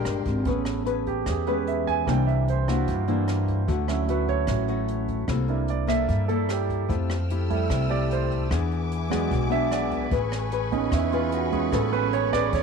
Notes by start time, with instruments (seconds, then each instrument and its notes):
Already playing: nylon-string guitar A#2 G#3 D4 G4, alto saxophone A#4, grand piano A#4, string section G5 C6 D6
0.05 upright bass G1, cross-stick, closed hi-hat
0.25 upright bass G#1, kick, closed hi-hat
0.45 upright bass A1, nylon-string guitar A3 C#4 G#4 B4, grand piano B3 C#4, kick, closed hi-hat
0.65 cross-stick, closed hi-hat
0.85 nylon-string guitar C#4 G#4 B4, closed hi-hat
1.06 grand piano G4, kick, closed hi-hat
1.26 upright bass E2, nylon-string guitar E3, grand piano G#4, kick, cross-stick, closed hi-hat
1.46 grand piano G#3 B3 C#4 B4, nylon-string guitar C#4 G#4 B4, closed hi-hat
1.67 grand piano E5, closed hi-hat
1.87 grand piano G#5, kick, closed hi-hat
2.06 upright bass C2, nylon-string guitar C3 A#3 D4 E4, grand piano E3 A#3 D4 G5, kick, cross-stick, closed hi-hat
2.27 grand piano E5, closed hi-hat
2.48 grand piano C5, closed hi-hat
2.68 nylon-string guitar A#3 D4 E4, grand piano F#4, kick, cross-stick, closed hi-hat
2.88 upright bass G2, nylon-string guitar G3, kick, closed hi-hat
3.08 grand piano E3 A#3 D4, nylon-string guitar A#3 D4 E4, closed hi-hat
3.28 cross-stick, closed hi-hat
3.48 kick, closed hi-hat
3.67 upright bass D2, nylon-string guitar D3 A3 C#4 F#4, kick, closed hi-hat
3.88 grand piano F#3 C#4 E4, cross-stick, closed hi-hat
4.08 nylon-string guitar A3 C#4 F#4, grand piano B4, closed hi-hat
4.28 grand piano C#5, kick, closed hi-hat
4.47 upright bass A1, nylon-string guitar A2, grand piano F#3 C#4 E4, kick, cross-stick, closed hi-hat
4.68 nylon-string guitar A3 C#4 F#4, closed hi-hat
4.88 closed hi-hat
5.08 kick, closed hi-hat
5.28 upright bass C2, nylon-string guitar C3 A#3 E4 A4, kick, cross-stick, closed hi-hat
5.48 grand piano A#3 D4 E4, closed hi-hat
5.68 grand piano D5, closed hi-hat
5.87 nylon-string guitar A#3 E4 A4, grand piano E5, kick, cross-stick, closed hi-hat
6.07 upright bass G2, nylon-string guitar G3, kick, closed hi-hat
6.28 nylon-string guitar A#3 E4 A4, grand piano A4, closed hi-hat
6.49 grand piano G4, cross-stick, closed hi-hat
6.69 kick, closed hi-hat
6.88 upright bass F2, nylon-string guitar F3 A3 E4 G4, string section A4 G5 E6 F6, kick, closed hi-hat
7.10 cross-stick, closed hi-hat
7.30 nylon-string guitar A3 E4 G4, closed hi-hat
7.49 grand piano G3 A3 E4, kick, closed hi-hat
7.70 upright bass C2, nylon-string guitar C3, kick, cross-stick, closed hi-hat
7.89 nylon-string guitar A3 E4 G4, grand piano D5, closed hi-hat
8.11 grand piano C5, closed hi-hat
8.31 kick, closed hi-hat
8.50 upright bass E2, nylon-string guitar E3 B3 D4 G#4, string section B4 E5 G#5 D6, kick, cross-stick, closed hi-hat
8.72 closed hi-hat
8.91 closed hi-hat
9.10 grand piano F#3 G#3 D4, nylon-string guitar B3 D4 G#4, kick, cross-stick, closed hi-hat
9.30 upright bass B1, nylon-string guitar B2, kick, closed hi-hat
9.50 nylon-string guitar B3 D4 G#4, grand piano E5, closed hi-hat
9.71 grand piano D5, cross-stick, closed hi-hat
9.91 kick, closed hi-hat
10.11 upright bass A1, nylon-string guitar A3 C#4 G#4 B4, string section B5 C#6, kick, closed hi-hat
10.32 cross-stick, closed hi-hat
10.52 nylon-string guitar C#4 G#4 B4, closed hi-hat
10.72 grand piano B3 C#4 D#4, kick, closed hi-hat
10.92 upright bass E2, nylon-string guitar E3, grand piano E4, kick, cross-stick, closed hi-hat
11.12 nylon-string guitar C#4 G#4 B4, grand piano F4, closed hi-hat
11.32 grand piano F#4, closed hi-hat
11.51 grand piano G#3 B3 C#4 G#4, kick, closed hi-hat
11.71 upright bass A1, nylon-string guitar A3 C#4 G#4 B4, grand piano A4, kick, cross-stick, closed hi-hat
11.92 grand piano B3 C#4 B4, closed hi-hat
12.13 grand piano C#5, closed hi-hat
12.33 nylon-string guitar C#4 G#4 B4, grand piano D5, kick, cross-stick, closed hi-hat
12.53 upright bass E2, nylon-string guitar E3, grand piano C#5, kick, closed hi-hat